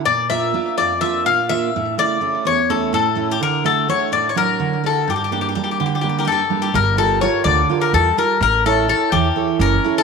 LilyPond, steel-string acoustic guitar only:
\new Staff \with { instrumentName = "Steel-string acoustic guitar" } { \time 7/8 \tempo 4 = 126 bes,8 <bes d' f'>8 <bes d' f'>8 f,8 <bes d' f'>8 bes,8 <bes d' f'>8 | a,8 <cis a e'>8 <a cis' e'>8 e,8 <a cis' e'>8 a,8 <a cis' e'>8 | d8 <a d' fis'>8 <a d' fis'>8 a,8 <fis d' fis'>8 d8 <a d' fis'>8 | g,8 <g bes d'>8 <g bes d'>8 d8 <g bes d'>8 g,8 <g bes d'>8 |
g8 <f' g' bes'>8 <f' g' bes'>8 d8 <f' g' bes'>8 g8 <f' g' bes'>8 | a8 <e' a' cis''>8 <e' a' cis''>8 e8 <e' a' cis''>8 cis'8 <e' a' cis''>8 | }